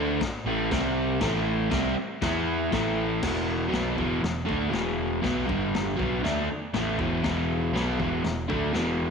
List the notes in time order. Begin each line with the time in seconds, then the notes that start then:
Already playing: D2 D3 A3 D4
0.21 muted overdriven electric guitar stroke, muted picked electric bass stroke, kick, snare, crash
0.44 A1 A2 E3 A3
0.71 C2 C3 G3 C4, kick, snare, crash
1.21 A1 A2 E3 A3, kick, snare, crash
1.71 C2 C3 G3 C4, kick, snare, crash
1.96 muted overdriven electric guitar stroke, muted picked electric bass stroke
2.22 E2 E3 B3 E4, kick, snare, crash
2.72 A1 A2 E3 A3, kick, snare, crash
3.23 E1 E2 B2 E3, kick, snare, floor tom, crash
3.48 floor tom
3.69 B1 B2 F#3 B3
3.73 snare, floor tom
3.96 E1 E2 B2 E3, kick, floor tom
4.21 E1 E2 B2, snare, floor tom
4.45 D2 D3 A3 D4, kick, floor tom
4.69 E1 E2 B2 E3
4.73 snare, floor tom
4.99 floor tom
5.21 B1 B2 F#3 B3, kick, snare, floor tom
5.45 G2 D3 G3, kick
5.49 G1, floor tom
5.75 snare, floor tom
5.97 B1 B2 F#3 B3, kick, floor tom
6.23 D2 D3 A3 D4, snare, floor tom
6.50 muted picked electric bass stroke, muted overdriven electric guitar stroke, floor tom
6.73 A1 A2 E3 A3, snare, floor tom
6.98 E1 E2 B2 E3, kick, floor tom
7.23 E1 E2 B2 E3, kick, snare, floor tom
7.51 floor tom
7.73 B1 B2 F#3 B3, snare, floor tom
7.99 E1 E2 B2 E3, kick, floor tom
8.23 E1 E2 B2, snare, floor tom
8.48 D2 D3 A3 D4, kick, floor tom
8.72 E1 E2 B2 E3, snare, floor tom
9.01 floor tom